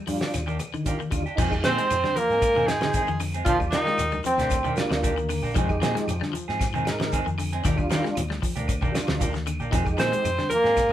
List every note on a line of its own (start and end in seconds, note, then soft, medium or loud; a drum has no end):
0.07 0.21 G2 medium
0.07 0.24 F3 medium
0.07 0.42 G3 medium
0.07 0.42 D4 medium
0.07 0.43 F4 medium
0.07 muted clean electric guitar stroke soft
0.07 open hi-hat medium
0.07 high conga medium
0.07 shekere medium
0.21 0.33 D4 soft
0.21 0.33 G4 medium
0.21 snare medium
0.21 shekere soft
0.34 0.58 D#2 medium
0.34 muted clean electric guitar stroke soft
0.34 snare soft
0.34 closed hi-hat medium
0.34 claves medium
0.34 shekere medium
0.47 0.64 D#3 medium
0.47 0.58 A#3 medium
0.47 0.58 D4 medium
0.47 0.58 G4 medium
0.47 high conga medium
0.47 shekere soft
0.59 muted clean electric guitar stroke soft
0.59 closed hi-hat soft
0.59 high conga loud
0.59 claves medium
0.59 shekere medium
0.74 0.90 D3 medium
0.74 0.97 D#3 medium
0.74 shekere soft
0.84 0.97 G3 medium
0.84 1.00 A#3 medium
0.84 0.97 D4 medium
0.84 0.98 F4 medium
0.84 0.98 G4 medium
0.84 muted clean electric guitar stroke medium
0.84 kick medium
0.84 closed hi-hat medium
0.84 high conga medium
0.84 shekere medium
0.99 1.08 D#3 medium
0.99 muted clean electric guitar stroke soft
0.99 shekere soft
1.10 1.24 D#2 medium
1.10 1.28 D3 medium
1.10 1.23 G3 medium
1.10 1.23 D4 medium
1.10 1.24 F4 medium
1.10 muted clean electric guitar stroke soft
1.10 kick medium
1.10 closed hi-hat medium
1.10 claves medium
1.10 shekere medium
1.26 1.38 D4 soft
1.26 1.38 G4 medium
1.26 shekere soft
1.36 1.62 F2 loud
1.36 1.52 D#3 medium
1.36 1.55 F3 medium
1.36 1.52 G#3 medium
1.36 1.52 C4 medium
1.36 1.43 D#4 medium
1.36 1.44 G4 loud
1.36 1.51 G#4 medium
1.36 kick medium
1.36 crash medium
1.36 low conga medium
1.36 shekere loud
1.49 1.96 G#3 medium
1.49 1.96 D#4 medium
1.49 1.97 G4 medium
1.49 muted clean electric guitar stroke soft
1.49 kick medium
1.49 claves medium
1.49 shekere soft
1.64 1.77 A#2 loud
1.64 1.78 D#3 medium
1.64 1.73 F3 medium
1.64 1.79 G#3 medium
1.64 2.20 C4 loud
1.64 1.78 C4 medium
1.64 1.78 G#4 medium
1.64 2.17 C5 loud
1.64 snare medium
1.64 closed hi-hat medium
1.64 high conga medium
1.64 shekere medium
1.78 1.95 G#3 medium
1.78 muted clean electric guitar stroke soft
1.78 closed hi-hat soft
1.78 shekere soft
1.90 2.03 F2 medium
1.90 muted clean electric guitar stroke soft
1.90 closed hi-hat medium
1.90 claves medium
1.90 shekere medium
2.03 2.15 D3 medium
2.03 2.12 G3 medium
2.03 muted clean electric guitar stroke medium
2.03 snare soft
2.03 high conga medium
2.03 shekere soft
2.15 2.33 F3 medium
2.15 2.72 A#3 medium
2.15 2.69 A#4 loud
2.15 muted clean electric guitar stroke soft
2.15 closed hi-hat medium
2.15 high conga medium
2.15 shekere medium
2.30 3.04 G#2 medium
2.30 2.46 G#3 soft
2.30 2.46 C4 medium
2.30 2.46 G#4 medium
2.30 shekere soft
2.42 kick medium
2.42 closed hi-hat medium
2.42 claves medium
2.42 shekere loud
2.55 2.73 D#3 medium
2.55 2.69 D#3 medium
2.55 2.67 G#3 medium
2.55 2.68 C4 medium
2.55 2.68 G#4 medium
2.55 low conga medium
2.55 shekere soft
2.66 3.02 G#3 medium
2.66 3.21 G#3 medium
2.66 3.02 D#4 medium
2.66 3.20 G#4 medium
2.66 3.02 G5 medium
2.66 muted clean electric guitar stroke soft
2.66 snare medium
2.66 closed hi-hat medium
2.66 claves medium
2.66 shekere medium
2.81 2.99 D3 medium
2.81 snare medium
2.81 high conga loud
2.81 shekere soft
2.93 3.08 D#3 medium
2.93 3.08 G#3 medium
2.93 3.08 C4 medium
2.93 3.07 G#4 medium
2.93 kick medium
2.93 closed hi-hat medium
2.93 high conga medium
2.93 shekere medium
3.07 3.43 F2 medium
3.07 3.16 D#3 medium
3.07 muted clean electric guitar stroke soft
3.07 shekere soft
3.20 3.37 D3 medium
3.20 muted clean electric guitar stroke soft
3.20 open hi-hat medium
3.20 claves medium
3.20 shekere medium
3.34 3.46 G#3 soft
3.34 3.46 C4 medium
3.34 3.46 G#4 medium
3.34 closed hi-hat medium
3.34 shekere soft
3.45 3.70 D#2 loud
3.45 3.63 D#3 loud
3.45 3.60 D#3 medium
3.45 3.58 F3 loud
3.45 3.60 A#3 medium
3.45 3.52 D4 medium
3.45 3.59 D4 medium
3.45 3.57 F4 loud
3.45 3.53 F4 medium
3.45 3.59 G4 medium
3.45 kick medium
3.45 closed hi-hat medium
3.45 low conga medium
3.45 shekere medium
3.59 4.05 G3 medium
3.59 4.05 F4 medium
3.59 4.05 D5 medium
3.59 muted clean electric guitar stroke soft
3.59 kick medium
3.59 high conga medium
3.59 claves medium
3.59 shekere soft
3.71 3.81 D#3 medium
3.71 4.21 D#3 medium
3.71 3.86 D#3 medium
3.71 3.85 D#3 medium
3.71 3.86 A#3 medium
3.71 3.86 D4 medium
3.71 4.20 D#4 loud
3.71 3.85 G4 medium
3.71 snare medium
3.71 closed hi-hat medium
3.71 high conga medium
3.71 shekere medium
3.86 4.03 G#3 medium
3.86 muted clean electric guitar stroke soft
3.86 muted fingered electric bass stroke soft
3.86 snare soft
3.86 shekere soft
3.98 4.13 D#2 medium
3.98 muted clean electric guitar stroke soft
3.98 closed hi-hat medium
3.98 claves medium
3.98 shekere medium
4.11 4.24 D2 medium
4.11 4.20 G3 medium
4.11 muted clean electric guitar stroke soft
4.11 high conga medium
4.11 shekere soft
4.24 4.41 F3 medium
4.24 4.74 C4 loud
4.24 muted clean electric guitar stroke soft
4.24 closed hi-hat medium
4.24 high conga medium
4.24 shekere medium
4.38 4.62 D2 medium
4.38 4.54 A#3 medium
4.38 4.54 D4 medium
4.38 4.54 G4 medium
4.38 snare soft
4.38 closed hi-hat medium
4.38 low conga medium
4.38 shekere soft
4.50 kick medium
4.50 closed hi-hat medium
4.50 claves medium
4.50 shekere medium
4.64 4.81 D#3 medium
4.64 4.76 D#3 medium
4.64 4.77 A#3 medium
4.64 4.77 D4 medium
4.64 4.77 G4 medium
4.64 low conga medium
4.64 shekere soft
4.75 5.11 G3 medium
4.75 5.50 A#3 medium
4.75 5.12 D4 medium
4.75 5.12 F4 loud
4.75 muted clean electric guitar stroke soft
4.75 snare medium
4.75 closed hi-hat medium
4.75 claves medium
4.75 shekere medium
4.90 5.29 D2 medium
4.90 muted clean electric guitar stroke medium
4.90 snare medium
4.90 high conga medium
4.90 shekere soft
5.03 5.16 D#3 medium
5.03 5.16 A#3 medium
5.03 5.15 D4 medium
5.03 5.15 G4 medium
5.03 kick medium
5.03 closed hi-hat medium
5.03 high conga medium
5.03 shekere medium
5.16 5.25 D#3 medium
5.16 muted clean electric guitar stroke soft
5.16 shekere soft
5.29 5.41 D#2 medium
5.29 5.46 D3 medium
5.29 muted clean electric guitar stroke soft
5.29 open hi-hat medium
5.29 claves medium
5.29 shekere medium
5.42 5.54 A#1 loud
5.42 5.55 A#3 medium
5.42 5.55 D4 medium
5.42 5.55 G4 medium
5.42 shekere soft
5.54 5.79 F2 medium
5.54 5.69 D#3 medium
5.54 5.72 F3 loud
5.54 5.81 G#3 loud
5.54 5.69 G#3 medium
5.54 5.68 C4 medium
5.54 5.60 D#4 medium
5.54 5.61 G4 loud
5.54 5.68 G#4 medium
5.54 kick medium
5.54 closed hi-hat medium
5.54 low conga medium
5.54 shekere medium
5.68 6.14 G#3 medium
5.68 6.14 D#4 medium
5.68 6.14 G4 loud
5.68 muted clean electric guitar stroke soft
5.68 kick medium
5.68 high conga medium
5.68 claves medium
5.68 shekere soft
5.81 5.94 A#2 medium
5.81 5.95 D#3 medium
5.81 6.86 F3 medium
5.81 5.90 F3 medium
5.81 5.95 G#3 medium
5.81 5.95 C4 medium
5.81 5.95 G#4 medium
5.81 snare medium
5.81 closed hi-hat medium
5.81 high conga medium
5.81 shekere medium
5.95 6.12 G#3 medium
5.95 muted clean electric guitar stroke medium
5.95 snare soft
5.95 closed hi-hat soft
5.95 shekere soft
6.07 6.20 F2 medium
6.07 muted clean electric guitar stroke soft
6.07 closed hi-hat medium
6.07 claves medium
6.07 shekere medium
6.21 6.32 D3 medium
6.21 6.29 G3 medium
6.21 muted clean electric guitar stroke medium
6.21 snare soft
6.21 shekere soft
6.33 6.50 F3 medium
6.33 muted clean electric guitar stroke soft
6.33 closed hi-hat medium
6.33 high conga medium
6.33 shekere medium
6.48 7.22 G#2 medium
6.48 6.63 G#3 medium
6.48 6.63 C4 medium
6.48 6.63 G#4 medium
6.48 snare soft
6.48 shekere soft
6.59 kick medium
6.59 snare soft
6.59 closed hi-hat medium
6.59 claves medium
6.59 shekere medium
6.74 6.90 D#3 medium
6.74 6.86 D#3 medium
6.74 6.86 G#3 medium
6.74 6.86 C4 medium
6.74 6.86 G#4 medium
6.74 low conga medium
6.74 shekere soft
6.85 7.20 G#3 medium
6.85 7.20 D#4 medium
6.85 7.21 A#4 loud
6.85 muted clean electric guitar stroke soft
6.85 snare medium
6.85 closed hi-hat soft
6.85 claves medium
6.85 shekere medium
7.00 7.16 D3 medium
7.00 snare medium
7.00 high conga loud
7.00 shekere soft
7.12 7.25 D#3 medium
7.12 7.26 G#3 medium
7.12 7.26 C4 medium
7.12 7.25 G#4 medium
7.12 kick medium
7.12 closed hi-hat medium
7.12 high conga medium
7.12 shekere medium
7.26 7.61 F2 medium
7.26 7.34 D#3 medium
7.26 muted clean electric guitar stroke medium
7.26 shekere soft
7.38 7.55 D3 medium
7.38 muted clean electric guitar stroke soft
7.38 open hi-hat medium
7.38 claves medium
7.38 shekere medium
7.52 7.64 G#3 medium
7.52 7.64 C4 medium
7.52 7.64 G#4 medium
7.52 closed hi-hat medium
7.52 shekere soft
7.62 7.88 D#2 loud
7.62 7.78 D#3 medium
7.62 7.81 D#3 medium
7.62 7.78 A#3 medium
7.62 7.69 D4 medium
7.62 7.78 D4 medium
7.62 7.70 F4 loud
7.62 7.77 G4 medium
7.62 kick medium
7.62 closed hi-hat medium
7.62 low conga medium
7.62 shekere medium
7.75 8.21 G3 medium
7.75 8.22 D4 medium
7.75 8.23 F4 loud
7.75 muted clean electric guitar stroke medium
7.75 kick medium
7.75 claves medium
7.75 shekere soft
7.90 8.04 D#3 medium
7.90 7.99 D#3 medium
7.90 8.03 D#3 medium
7.90 8.04 A#3 medium
7.90 8.03 G4 medium
7.90 muted clean electric guitar stroke loud
7.90 snare medium
7.90 closed hi-hat medium
7.90 high conga medium
7.90 shekere medium
8.04 8.21 G#3 medium
8.04 muted clean electric guitar stroke soft
8.04 muted fingered electric bass stroke soft
8.04 snare soft
8.04 shekere soft
8.15 8.31 D#2 loud
8.15 muted clean electric guitar stroke soft
8.15 closed hi-hat medium
8.15 high conga medium
8.15 claves medium
8.15 shekere medium
8.30 8.42 D2 medium
8.30 8.38 G3 medium
8.30 muted clean electric guitar stroke soft
8.30 snare soft
8.30 shekere soft
8.42 8.59 F3 medium
8.42 muted clean electric guitar stroke soft
8.42 muted fingered electric bass stroke soft
8.42 kick medium
8.42 open hi-hat medium
8.42 high conga medium
8.42 shekere medium
8.56 8.80 D2 medium
8.56 8.71 A#3 medium
8.56 8.71 D4 medium
8.56 8.71 G4 medium
8.56 closed hi-hat medium
8.56 low conga medium
8.56 shekere soft
8.68 kick medium
8.68 closed hi-hat medium
8.68 claves medium
8.68 shekere medium
8.82 8.99 D#3 medium
8.82 8.93 D#3 medium
8.82 8.93 A#3 medium
8.82 8.93 D4 medium
8.82 8.94 G4 medium
8.82 kick medium
8.82 low conga medium
8.82 shekere soft
8.92 9.27 G3 medium
8.92 9.28 D4 medium
8.92 9.29 F4 loud
8.92 muted clean electric guitar stroke soft
8.92 snare medium
8.92 closed hi-hat medium
8.92 claves medium
8.92 shekere medium
9.08 9.47 D2 medium
9.08 9.25 D3 medium
9.08 snare medium
9.08 high conga medium
9.08 shekere soft
9.19 9.33 D#3 medium
9.19 9.33 A#3 medium
9.19 9.32 D4 medium
9.19 9.32 G4 medium
9.19 kick medium
9.19 closed hi-hat medium
9.19 high conga medium
9.19 shekere medium
9.33 9.42 D#3 medium
9.33 muted clean electric guitar stroke soft
9.33 snare soft
9.33 shekere soft
9.46 9.59 D#2 medium
9.46 9.63 D3 medium
9.46 muted clean electric guitar stroke soft
9.46 closed hi-hat soft
9.46 claves medium
9.46 shekere medium
9.60 9.71 A#1 medium
9.60 9.72 A#3 soft
9.60 9.72 D4 soft
9.60 9.72 G4 medium
9.60 shekere soft
9.71 9.96 F2 medium
9.71 9.86 D#3 medium
9.71 9.89 F3 medium
9.71 9.85 G#3 medium
9.71 9.84 C4 medium
9.71 9.78 D#4 medium
9.71 9.78 G4 loud
9.71 9.84 G#4 medium
9.71 kick medium
9.71 closed hi-hat medium
9.71 low conga medium
9.71 shekere medium
9.84 10.30 G#3 medium
9.84 10.31 D#4 medium
9.84 10.31 G4 medium
9.84 muted clean electric guitar stroke soft
9.84 kick medium
9.84 high conga medium
9.84 claves medium
9.84 shekere soft
9.97 10.11 A#2 medium
9.97 10.11 D#3 medium
9.97 10.07 F3 medium
9.97 10.11 G#3 medium
9.97 10.11 C4 medium
9.97 10.10 G#4 medium
9.97 10.48 C5 loud
9.97 snare medium
9.97 closed hi-hat medium
9.97 high conga loud
9.97 shekere medium
10.02 10.49 C4 medium
10.11 10.29 G#3 medium
10.11 muted clean electric guitar stroke soft
10.11 closed hi-hat soft
10.11 shekere soft
10.24 10.37 F2 medium
10.24 muted clean electric guitar stroke soft
10.24 closed hi-hat medium
10.24 claves medium
10.24 shekere medium
10.38 10.50 D3 medium
10.38 10.46 G3 medium
10.38 muted clean electric guitar stroke soft
10.38 snare soft
10.38 high conga medium
10.38 shekere soft
10.49 10.67 F3 medium
10.49 10.93 A#3 medium
10.49 10.93 A#4 loud
10.49 muted clean electric guitar stroke soft
10.49 closed hi-hat medium
10.49 high conga medium
10.49 shekere medium
10.63 10.93 G#2 medium
10.63 10.80 G#3 soft
10.63 10.79 C4 medium
10.63 10.79 G#4 medium
10.63 snare soft
10.63 shekere soft
10.77 kick medium
10.77 snare soft
10.77 closed hi-hat medium
10.77 claves medium
10.77 shekere medium
10.89 low conga medium